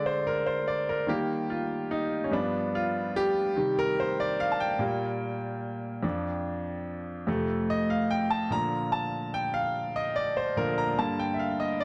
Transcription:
grand piano
Already playing: D3 G#3 D4 D5
0.06 C5
0.27 A#4
0.47 C5
0.68 D5
0.89 A#4
1.07 D#3 G3 A#3 G4
1.50 F4
1.91 D#4
2.24 C#4
2.31 G2 F3 B3 D4
2.75 F4
3.16 G4
3.56 C3 D#3 G3
3.79 A#4
4.00 C5
4.20 D5
4.40 F5
4.52 A5
4.60 G5
4.79 A#2 G3 A#3
6.03 F2 F3 D4
7.27 F2 C3 A3
7.70 D#5
7.90 F5
8.11 G5
8.31 A5
8.50 A#2 D3 F3 A#5
8.92 A5
9.34 G5
9.54 F5
9.96 D#5
10.16 D5
10.37 C5
10.57 A#2 D3 F3 A#4
10.78 A#5
10.98 G2 D3 A#3 A5
11.19 G5
11.34 E5
11.39 F5
11.60 D#5
11.80 D5

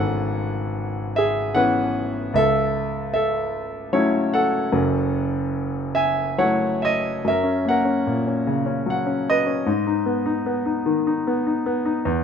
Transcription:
grand piano
Already playing: E3 B3 C#4 A4 B4 F#5 G#5
0.00 G#1
1.16 G#4 E5
1.55 E3 B3 C#4 B4 F#5
2.34 C#2 A4 E5
3.14 A4 E5
3.93 F#3 A3 C#4 E4 C#5
4.34 A4 F#5
4.72 F#1 F#2
5.95 E5 G#5
6.38 F#3 A3 E4 C#5 F#5
6.82 D#5 E5
7.25 F#2 E5
7.30 A#4
7.43 C#4
7.65 A#3 F#5
7.70 A#4
7.85 C#4
8.07 A#2
8.27 C#4
8.47 C#3
8.66 C#4
8.86 F#3
8.90 F#5
9.07 C#4
9.30 B4 D#5
9.46 C#4
9.66 G#2
9.87 D#4
10.06 B3
10.26 D#4
10.46 B3
10.66 D#4
10.86 D#3
11.07 D#4
11.27 B3
11.47 D#4
11.66 B3
11.85 D#4
12.05 E2

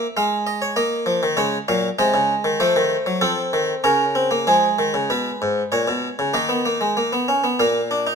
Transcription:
harpsichord
Already playing: E5
0.17 G#3 F5
0.47 D#5
0.62 C#5
0.76 A#3 D#5
1.06 F3
1.23 D#3
1.37 C#3 G#3 C#5
1.68 A#2 F#3 F5
1.99 C3 G#3 D#5
2.14 C#3
2.44 D#3
2.60 F3 A3 C5
2.76 D#3
3.06 F#3
3.21 F3 C4 A4
3.53 D#3
3.84 C#3 C#4 A#4
4.15 C4
4.31 A#3
4.47 F3 G#3 G#4
4.79 D#3
4.94 C#3
5.10 B2 B4
5.42 G#2
5.72 A#2 C#5
5.88 B2
6.19 C#3
6.34 D#3 A#3 D#5
6.49 B3
6.66 A#3
6.81 G#3
6.97 A#3
7.13 B3
7.28 C#4
7.44 B3
7.59 A#2 A#3 F5
7.91 D4
8.07 D#4

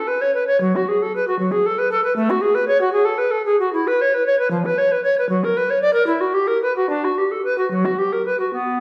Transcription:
recorder
0.07 B4
0.21 C#5
0.34 B4
0.47 C#5
0.60 F#3
0.75 F#4
0.88 G#4
1.02 A4
1.16 B4
1.28 F#4
1.39 F#3
1.51 G#4
1.66 A4
1.78 B4
1.91 A4
2.04 B4
2.16 A3
2.30 F#4
2.41 G#4
2.55 B4
2.68 C#5
2.81 F#4
2.92 G#4
3.05 A4
3.18 B4
3.31 A4
3.45 G#4
3.60 F#4
3.73 E4
3.87 B4
4.01 C#5
4.14 B4
4.26 C#5
4.39 B4
4.51 F3
4.65 B4
4.78 C#5
4.92 B4
5.04 C#5
5.18 B4
5.29 F#3
5.44 A#4
5.57 B4
5.70 C#5
5.82 D5
5.93 A#4
6.07 E4
6.21 F#4
6.34 G4
6.47 A#4
6.62 B4
6.76 F#4
6.89 D4
7.04 F#4
7.18 G4
7.31 A4
7.44 B4
7.58 F#4
7.70 F#3
7.85 F#4
7.98 G4
8.12 A#4
8.26 B4
8.40 F#4
8.53 B3

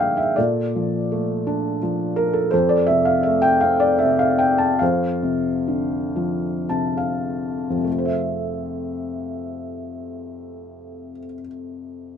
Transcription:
felt piano
Already playing: G2 D3 F3 A#3 A#4 D5 E5 G5
0.00 F5
0.17 E5
0.36 A#2 A4 D5
0.76 F3
1.12 A3
1.47 D4
1.82 F3
2.16 A#4
2.33 A4
2.51 F2 A4 C5
2.69 D5
2.87 C3 E5
3.05 F5
3.23 A3 E5
3.42 G5
3.61 C4 F5
3.80 D5
3.98 E5
4.03 C3
4.19 F5
4.39 G5
4.58 A5
4.79 F2 C5 F5
5.23 C3
5.68 D3
6.16 F3
6.69 C3 A5
6.97 F5
7.70 F2
7.77 C3
7.84 A3
7.91 F4
7.98 C5
8.05 E5

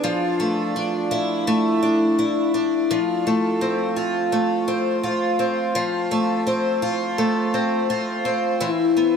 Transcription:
twelve-string acoustic guitar
Already playing: B3 D4 G#4
0.04 F3
0.40 A3
0.76 D4
1.11 E4
1.47 A3
1.82 D4
2.19 E4
2.54 D4
2.91 F3
3.27 A3
3.61 C4
3.96 F4
4.32 A3
4.68 C4
5.04 F4
5.39 C4
5.75 F3
6.11 A3
6.47 C4
6.82 F4
7.18 A3
7.54 C4
7.90 F4
8.25 C4
8.61 E3
8.97 B3

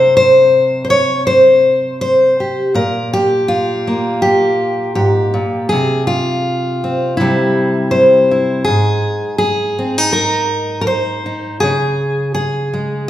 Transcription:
steel-string acoustic guitar
Already playing: C3 C5
0.17 C5
0.85 C5
0.90 C#5
1.27 C5
2.01 C5
2.40 G4
2.74 A#2 A#4
3.13 G4
3.48 F4
3.87 A#3
4.22 G4
4.95 G#2 G4
5.34 A#2
5.69 C3 G#4
6.07 F4
6.84 C4
7.17 C3 G3 E4
7.21 C4
7.91 C5
8.31 E4
8.64 G#2 G#4
9.38 G#4
9.79 C4
9.98 D#4
10.13 A#4
10.81 A#4
10.87 C5
11.26 D#4
11.60 C#3 G#4
12.34 G#4
12.74 G#3

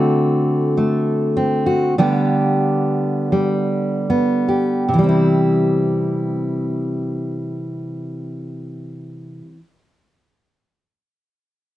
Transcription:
steel-string acoustic guitar
Already playing: D3 A3 C4 F#4
0.77 A3
1.37 C4
1.66 F#4
1.98 D3 G3 B3 G4
3.32 G3
4.10 B3
4.48 G4
4.89 C3
4.94 E3
4.99 G3
5.03 C4
5.09 E4

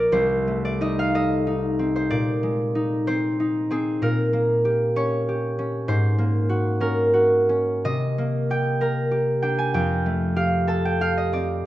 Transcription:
harp
Already playing: C4 F4 A#4 D5
0.12 C2 C5
0.47 A3
0.65 D5
0.81 D#4 D#5
0.99 F5
1.15 A4 D#5
1.47 D#4
1.79 C4
1.96 C5
2.10 A#2 D5
2.43 G#3
2.75 D#4
3.07 C4 C5
3.40 D#4
3.71 C4 G#4
4.02 A#2 A#4
4.33 A#3
4.65 G4
4.96 C#4 C#5
5.29 G4
5.59 C#4
5.88 G#2 C5
6.18 A#3
6.49 F#4
6.80 C#4 A#4
7.14 F#4
7.49 C#4
7.85 C3 D#5
8.18 A#3
8.50 G4 G5
8.81 A#4 A#5
9.11 G4
9.42 D4 G5
9.58 G#5
9.74 F2 G5
10.06 A3
10.36 G4 F5
10.67 A4 A5
10.85 G5
11.01 G4 F5
11.17 D#5
11.33 C4 D5

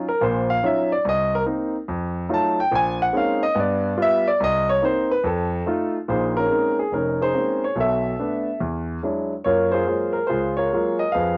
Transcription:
grand piano
0.08 A#4
0.21 A#1 A#2 C5
0.50 F5
0.63 F#3 C#4 D#4 F4 E5
0.92 D5
1.05 C2
1.09 D#5
1.35 A#4
1.46 A#3 C4 D#4
1.88 F2
2.29 F#3 A3 D#4 F4
2.34 A5
2.60 G5
2.72 A#1 G#5
3.02 F#5
3.13 G#3 A#3 C4 C#4 D#4
3.17 F5
3.43 D#5
3.55 G2 B3
3.60 D5
3.97 G3 B3 F4
4.02 E5
4.28 D5
4.40 C2 D#5
4.69 C#5
4.82 A#3 C4 D#4 C5
5.11 B4
5.24 F2 A4
5.66 A3 D#4 F4
6.08 A#1 A#2 D#4 G#4 C5
6.37 C#4 D#4 A#4
6.50 G#3 A#3 C4 C#4 D#4
6.79 G#4
6.92 F1 C#4 D#4 A#4
7.21 D#4 G#4 C5
7.34 G#3 A#3 C4 C#4 D#4
7.64 C#5
7.76 B1 B2
7.80 A4 E5
8.20 A3 B3 D4
8.61 E2
9.03 F#3 G#3 D4 E4
9.45 F#2 A#3 F4 A#4 C#5
9.72 F4 G#4 C5
9.87 F#3 G#3 A#3 F4
10.13 A#4
10.27 C#2 F4 G#4 C5
10.57 F4 A#4 C#5
10.73 F#3 G#3 A#3 F4
10.99 D#5
11.12 F2 F3 G#4 B4 F5

